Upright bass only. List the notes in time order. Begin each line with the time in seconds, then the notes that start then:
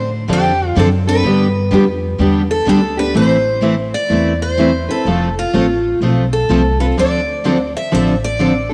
Already playing: A2
0.28 F2
0.76 F#2
1.23 G2
1.71 F2
2.19 E2
2.66 D2
3.15 A1
4.10 E2
5.05 F1
5.54 A1
6.01 B1
6.49 C2
6.97 D2
7.93 A1